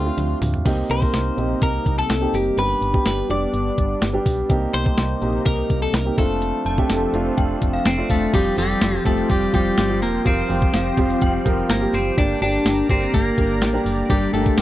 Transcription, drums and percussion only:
0.18 closed hi-hat, high tom
0.42 mid tom, open hi-hat
0.54 floor tom
0.66 kick, closed hi-hat, crash
0.90 closed hi-hat
1.02 kick
1.14 snare, closed hi-hat
1.38 closed hi-hat
1.62 kick, closed hi-hat
1.86 kick, closed hi-hat
2.10 snare, closed hi-hat
2.34 open hi-hat
2.58 closed hi-hat
2.82 closed hi-hat
2.94 kick
3.06 snare, closed hi-hat
3.30 closed hi-hat
3.53 closed hi-hat
3.78 kick, closed hi-hat
4.02 snare, closed hi-hat
4.26 kick, open hi-hat
4.50 kick, closed hi-hat
4.74 closed hi-hat
4.86 kick
4.98 snare, closed hi-hat
5.22 closed hi-hat
5.46 kick, closed hi-hat
5.70 kick, closed hi-hat
5.94 snare, closed hi-hat
6.18 kick, open hi-hat
6.42 closed hi-hat
6.66 closed hi-hat
6.78 kick
6.90 snare, closed hi-hat, tambourine
7.14 closed hi-hat
7.37 kick, closed hi-hat
7.62 kick, closed hi-hat
7.85 snare, closed hi-hat, tambourine
8.10 kick, open hi-hat
8.34 kick, closed hi-hat, crash
8.58 closed hi-hat
8.82 snare, closed hi-hat, tambourine
9.05 kick, closed hi-hat
9.18 closed hi-hat
9.29 kick, closed hi-hat
9.54 kick, closed hi-hat
9.77 snare, closed hi-hat, tambourine
10.02 open hi-hat
10.26 kick, closed hi-hat
10.50 closed hi-hat
10.62 kick
10.74 snare, closed hi-hat, tambourine
10.97 kick, closed hi-hat
11.10 closed hi-hat
11.21 kick, closed hi-hat
11.46 kick, closed hi-hat
11.69 snare, closed hi-hat, tambourine
11.94 open hi-hat
12.18 kick, closed hi-hat
12.42 closed hi-hat
12.66 snare, closed hi-hat, tambourine
12.89 kick, closed hi-hat
13.02 closed hi-hat
13.14 kick, closed hi-hat
13.38 kick, closed hi-hat
13.62 snare, closed hi-hat, tambourine
13.86 open hi-hat
14.10 kick, closed hi-hat
14.34 closed hi-hat
14.46 kick, closed hi-hat
14.58 snare, closed hi-hat, tambourine

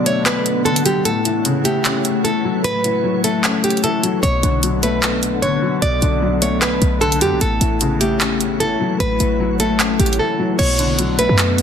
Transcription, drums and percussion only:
0.06 closed hi-hat
0.26 clap, closed hi-hat
0.46 closed hi-hat
0.66 closed hi-hat
0.76 closed hi-hat
0.86 closed hi-hat
1.05 closed hi-hat
1.25 closed hi-hat
1.45 closed hi-hat
1.65 closed hi-hat
1.85 clap, closed hi-hat
2.05 closed hi-hat
2.25 closed hi-hat
2.64 closed hi-hat
2.84 closed hi-hat
3.24 closed hi-hat
3.44 clap, closed hi-hat
3.64 closed hi-hat
3.70 closed hi-hat
3.77 closed hi-hat
3.84 closed hi-hat
4.04 closed hi-hat
4.23 closed hi-hat
4.43 closed hi-hat
4.63 closed hi-hat
4.83 closed hi-hat
5.03 clap, closed hi-hat
5.23 closed hi-hat
5.43 closed hi-hat
5.82 closed hi-hat
6.02 closed hi-hat
6.42 closed hi-hat
6.62 clap, closed hi-hat
6.82 closed hi-hat
7.02 closed hi-hat
7.12 closed hi-hat
7.21 closed hi-hat
7.41 closed hi-hat
7.61 closed hi-hat
7.81 closed hi-hat
8.01 closed hi-hat
8.21 clap, closed hi-hat
8.41 closed hi-hat
8.60 closed hi-hat
9.00 closed hi-hat
9.20 closed hi-hat
9.60 closed hi-hat
9.80 clap, closed hi-hat
10.00 closed hi-hat
10.06 closed hi-hat
10.13 closed hi-hat
10.59 closed hi-hat, crash
10.79 closed hi-hat
10.99 closed hi-hat
11.19 closed hi-hat
11.38 clap, closed hi-hat
11.58 closed hi-hat

